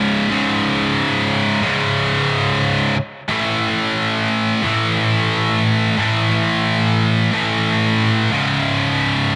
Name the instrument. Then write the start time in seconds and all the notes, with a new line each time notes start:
distorted electric guitar
Already playing: C#2 G#2 C#3
0.29 C#2 G#2 C#3
1.62 C#2 G#2 C#3
3.29 A2 E3 A3
4.63 A2 E3 A3
5.97 A2 E3 A3
7.31 A2 E3 A3
8.32 C#2 G#2 C#3